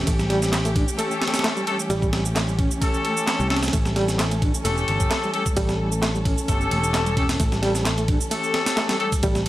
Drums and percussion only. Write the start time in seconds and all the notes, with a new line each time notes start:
0.07 kick, ride, shaker
0.19 snare, shaker
0.30 snare, ride
0.42 snare, shaker
0.53 snare, clap, ride, shaker
0.65 ride, shaker
0.76 kick, ride
0.88 shaker
0.99 ride, shaker
1.11 shaker
1.22 snare, ride
1.28 snare, ride
1.34 snare, ride, shaker
1.39 snare, ride
1.44 snare, clap, ride, shaker
1.57 shaker
1.67 ride
1.80 shaker
1.90 ride, shaker
2.02 kick, shaker
2.13 snare, ride
2.25 shaker
2.36 snare, clap, ride, shaker
2.48 shaker
2.59 kick, ride
2.71 shaker
2.82 kick, ride, shaker
2.94 shaker
3.05 ride
3.17 shaker
3.27 snare, clap, ride, shaker
3.40 shaker
3.50 snare, ride
3.56 snare, ride
3.63 snare, ride, shaker
3.68 snare, ride
3.73 kick, ride, shaker
3.85 snare, shaker
3.96 snare, ride
4.08 snare, shaker
4.19 snare, clap, ride, shaker
4.31 ride, shaker
4.42 kick, ride
4.54 shaker
4.65 ride, shaker
4.77 shaker
4.88 ride
5.00 kick, shaker
5.11 snare, clap, ride, shaker
5.23 shaker
5.34 ride
5.46 kick, shaker
5.57 kick, ride, shaker
5.69 snare, shaker
5.92 shaker
6.03 snare, clap, ride, shaker
6.15 shaker
6.25 kick, ride
6.38 shaker
6.48 kick, ride, shaker
6.61 shaker
6.71 ride
6.84 shaker
6.94 snare, clap, ride, shaker
7.06 ride, shaker
7.17 kick, ride
7.29 snare, ride, shaker
7.40 kick, ride, shaker
7.52 snare, shaker
7.63 snare, ride
7.75 snare, shaker
7.85 snare, clap, ride, shaker
7.98 ride, shaker
8.08 kick, ride
8.21 shaker
8.31 ride, shaker
8.44 shaker
8.54 snare, ride
8.66 snare, ride, shaker
8.77 snare, clap, ride, shaker
8.89 snare, ride, shaker
9.00 ride
9.12 kick, ride, shaker
9.23 kick, ride, shaker
9.35 snare, shaker